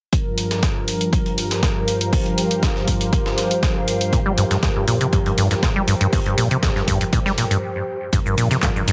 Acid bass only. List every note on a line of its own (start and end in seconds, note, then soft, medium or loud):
4.13 4.20 A#2 medium
4.26 4.32 G3 loud
4.38 4.45 G2 medium
4.51 4.57 G2 loud
4.63 4.70 G2 medium
4.76 4.86 G2 medium
4.88 4.99 A#2 loud
5.01 5.07 C3 medium
5.13 5.20 G2 medium
5.26 5.32 G2 medium
5.38 5.49 G2 loud
5.51 5.55 G2 medium
5.63 5.70 A#2 medium
5.76 5.82 G3 loud
5.88 5.95 G2 loud
6.01 6.07 G2 loud
6.13 6.20 G2 medium
6.26 6.36 G2 medium
6.38 6.49 A#2 medium
6.51 6.57 C3 loud
6.63 6.70 G2 medium
6.76 6.82 G2 medium
6.88 6.99 G2 loud
7.01 7.05 G2 medium
7.13 7.20 A#2 medium
7.26 7.32 G3 loud
7.38 7.45 A#2 medium
7.51 7.57 G2 medium
8.13 8.20 G2 medium
8.26 8.36 G2 medium
8.38 8.49 A#2 loud
8.51 8.57 C3 loud
8.63 8.70 G2 medium
8.76 8.82 G2 medium
8.88 8.93 G2 loud